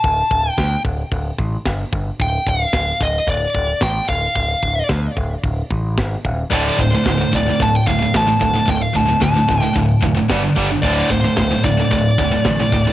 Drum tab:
HH |o-o-o-o-|o-o-o-o-|o-o-o-o-|o-o-o-o-|
SD |--o---o-|--o---o-|--o---o-|--o---o-|
BD |oooooooo|oooooooo|oooooooo|oooooooo|

HH |o-o-o-o-|o-o-o-o-|
SD |--o---o-|--o---o-|
BD |oooooooo|oooooooo|